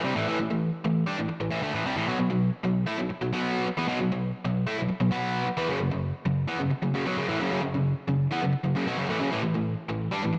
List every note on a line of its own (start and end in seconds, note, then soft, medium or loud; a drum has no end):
0.04 0.15 C3 medium
0.04 0.16 G3 medium
0.15 0.26 A2 medium
0.15 0.27 E3 medium
0.27 0.39 A2 medium
0.27 0.39 E3 loud
0.40 0.49 A2 medium
0.40 0.49 E3 medium
0.50 0.69 A2 medium
0.50 0.69 E3 medium
0.85 1.03 A2 medium
0.85 1.03 E3 medium
1.06 1.17 G3 medium
1.06 1.18 D4 medium
1.18 1.28 A2 medium
1.18 1.30 E3 medium
1.29 muted overdriven electric guitar stroke medium
1.40 1.49 A2 medium
1.40 1.50 E3 medium
1.51 1.62 A2 medium
1.51 1.63 E3 medium
1.62 1.73 D3 medium
1.62 1.74 A3 medium
1.74 1.85 A2 medium
1.74 1.86 E3 medium
1.85 1.96 C3 medium
1.85 1.97 G3 loud
1.96 2.07 A2 medium
1.96 2.08 E3 medium
2.07 2.18 B2 medium
2.07 2.18 F#3 medium
2.19 2.29 B2 medium
2.19 2.29 F#3 medium
2.30 2.49 B2 medium
2.30 2.49 F#3 medium
2.64 2.83 B2 medium
2.64 2.83 F#3 medium
2.86 2.98 A3 medium
2.86 2.98 E4 medium
2.98 3.09 B2 medium
2.98 3.10 F#3 medium
3.10 muted overdriven electric guitar stroke medium
3.21 3.31 B2 medium
3.21 3.32 F#3 medium
3.33 3.66 B2 medium
3.33 3.66 F#3 medium
3.33 3.67 B3 medium
3.67 muted overdriven electric guitar stroke medium
3.77 3.87 E3 medium
3.77 3.88 B3 medium
3.88 3.99 B2 loud
3.88 3.99 F#3 medium
4.00 4.11 B2 medium
4.00 4.11 F#3 medium
4.12 4.30 B2 medium
4.12 4.30 F#3 medium
4.45 4.64 B2 medium
4.45 4.64 F#3 medium
4.67 4.78 A3 medium
4.67 4.79 E4 loud
4.78 4.88 B2 medium
4.78 4.91 F#3 medium
4.89 muted overdriven electric guitar stroke medium
5.00 5.10 B2 medium
5.00 5.11 F#3 medium
5.11 5.45 B2 medium
5.11 5.46 F#3 medium
5.11 5.47 B3 medium
5.46 muted overdriven electric guitar stroke medium
5.57 5.69 E3 medium
5.57 5.69 B3 medium
5.69 5.79 F#2 loud
5.69 5.79 C#3 loud
5.80 5.90 F#2 medium
5.80 5.91 C#3 medium
5.91 6.10 F#2 medium
5.91 6.11 C#3 medium
6.26 6.45 F#2 medium
6.26 6.45 C#3 medium
6.48 6.60 E3 medium
6.48 6.60 B3 loud
6.59 6.70 F#2 medium
6.59 6.72 C#3 medium
6.71 muted overdriven electric guitar stroke medium
6.83 6.93 F#2 medium
6.83 6.94 C#3 medium
6.94 7.05 F#2 medium
6.94 7.05 C#3 loud
7.06 7.17 B2 medium
7.06 7.17 F#3 medium
7.17 7.28 F#2 medium
7.17 7.28 C#3 loud
7.28 7.39 A2 medium
7.28 7.40 E3 medium
7.40 7.50 F#2 medium
7.40 7.51 C#3 loud
7.51 7.61 F#2 loud
7.51 7.61 C#3 loud
7.62 7.73 F#2 medium
7.62 7.73 C#3 medium
7.74 7.92 F#2 medium
7.74 7.92 C#3 medium
8.08 8.26 F#2 medium
8.08 8.26 C#3 medium
8.31 8.41 E3 medium
8.31 8.42 B3 loud
8.42 8.51 F#2 medium
8.42 8.53 C#3 medium
8.53 muted overdriven electric guitar stroke medium
8.64 8.74 F#2 medium
8.64 8.75 C#3 medium
8.75 8.86 F#2 medium
8.75 8.86 C#3 medium
8.87 8.97 B2 medium
8.87 8.98 F#3 medium
8.98 9.09 F#2 medium
8.98 9.09 C#3 loud
9.10 9.20 A2 medium
9.10 9.21 E3 medium
9.20 9.31 F#2 medium
9.20 9.31 C#3 medium
9.32 9.42 A2 loud
9.32 9.42 E3 loud
9.43 9.54 A2 medium
9.43 9.54 E3 medium
9.55 9.73 A2 medium
9.55 9.73 E3 medium
9.89 10.07 A2 medium
9.89 10.07 E3 medium
10.11 10.22 G3 loud
10.11 10.22 D4 medium
10.22 10.32 A2 medium
10.22 10.34 E3 medium
10.34 muted overdriven electric guitar stroke medium